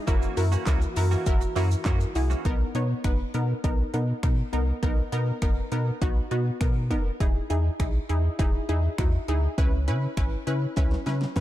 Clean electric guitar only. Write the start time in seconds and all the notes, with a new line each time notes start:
0.07 E3 A#3 C#4 F#4
0.37 muted clean electric guitar stroke
0.52 E3 A#3 C#4 F#4
0.66 E3 A#3 C#4 F#4
0.82 muted clean electric guitar stroke
0.96 muted clean electric guitar stroke
1.11 E3 A#3 C#4 F#4
1.41 muted clean electric guitar stroke
1.56 E3 A#3 C#4 F#4
1.71 muted clean electric guitar stroke
1.85 E3 A#3 C#4 F#4
2.00 muted clean electric guitar stroke
2.15 muted clean electric guitar stroke
2.30 E3 A#3 C#4 F#4